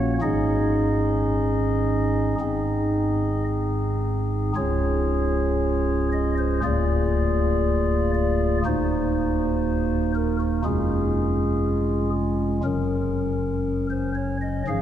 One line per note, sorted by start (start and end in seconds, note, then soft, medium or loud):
0.00 0.18 A#1 medium
0.00 0.18 A#2 medium
0.00 0.18 A#3 medium
0.00 0.18 C#4 medium
0.00 0.18 F#4 medium
0.00 0.14 C#5 loud
0.21 2.35 G#1 medium
0.21 2.35 G#2 medium
0.21 2.35 C#4 soft
0.21 2.35 D#4 soft
0.21 2.35 G#4 soft
0.21 3.44 D#5 loud
2.40 4.52 G#1 medium
2.40 4.52 G#2 medium
2.40 4.52 C4 soft
2.40 4.52 D#4 soft
2.40 4.52 G#4 soft
4.55 6.60 C#1 medium
4.55 6.60 C#2 medium
4.55 6.60 C#4 soft
4.55 6.60 F4 soft
4.55 6.60 G#4 soft
4.55 6.09 C#5 loud
6.12 6.34 D#5 loud
6.38 6.60 C5 loud
6.63 8.61 D1 medium
6.63 8.61 D2 medium
6.63 8.61 A#3 soft
6.63 8.61 F4 medium
6.63 8.61 G#4 medium
6.63 8.11 D5 loud
8.14 8.57 D5 loud
8.65 10.61 D#1 medium
8.65 10.61 D#2 medium
8.65 10.61 A#3 medium
8.65 10.61 D#4 medium
8.65 10.38 F#4 medium
8.65 10.11 C5 loud
10.15 10.36 A#4 loud
10.40 10.62 F#4 loud
10.64 12.60 F1 medium
10.64 12.60 F2 medium
10.64 12.60 G#3 medium
10.64 12.60 C#4 medium
10.64 12.60 F4 medium
10.64 12.10 G#4 loud
12.64 14.63 F#1 medium
12.64 14.63 F#2 medium
12.64 14.63 F#3 soft
12.64 14.63 C#4 medium
12.64 13.87 A#4 loud
13.90 14.12 C5 medium
14.15 14.37 C#5 loud
14.41 14.63 D#5 loud
14.67 14.82 G#1 medium
14.67 14.82 G#2 medium
14.67 14.82 F3 soft
14.67 14.82 C#4 medium
14.67 14.82 G#4 soft
14.67 14.82 F5 loud